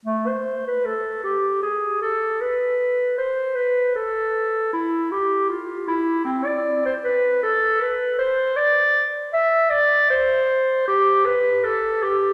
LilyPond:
\new Staff \with { instrumentName = "Clarinet" } { \time 4/4 \key a \minor \tempo 4 = 78 a16 c''8 b'16 a'8 g'8 gis'8 a'8 b'4 | c''8 b'8 a'4 e'8 g'8 f'8 e'8 | c'16 d''8 c''16 b'8 a'8 b'8 c''8 d''8. r16 | e''8 d''8 c''4 g'8 b'8 a'8 g'8 | }